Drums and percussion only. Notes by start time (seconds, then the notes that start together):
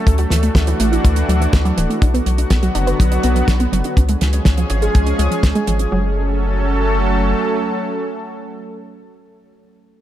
0.07 kick, closed hi-hat
0.18 closed hi-hat
0.30 snare, closed hi-hat
0.43 closed hi-hat
0.55 kick, snare, closed hi-hat
0.67 closed hi-hat
0.80 closed hi-hat
0.93 closed hi-hat
1.05 kick, closed hi-hat
1.16 closed hi-hat
1.29 closed hi-hat
1.42 closed hi-hat
1.53 kick, snare, closed hi-hat
1.65 closed hi-hat
1.78 closed hi-hat
1.91 closed hi-hat
2.02 kick, closed hi-hat
2.15 closed hi-hat
2.26 closed hi-hat
2.38 closed hi-hat
2.50 kick, snare, closed hi-hat
2.63 closed hi-hat
2.75 closed hi-hat
2.87 closed hi-hat
3.00 kick, closed hi-hat
3.12 closed hi-hat
3.23 closed hi-hat
3.36 closed hi-hat
3.48 kick, snare, closed hi-hat
3.60 closed hi-hat
3.73 closed hi-hat
3.84 closed hi-hat
3.97 kick, closed hi-hat
4.09 closed hi-hat
4.21 snare, closed hi-hat
4.33 closed hi-hat
4.45 kick, snare, closed hi-hat
4.58 closed hi-hat
4.70 closed hi-hat
4.82 closed hi-hat
4.95 kick, closed hi-hat
5.07 closed hi-hat
5.19 closed hi-hat
5.32 closed hi-hat
5.43 kick, snare, closed hi-hat
5.55 closed hi-hat
5.67 closed hi-hat
5.79 closed hi-hat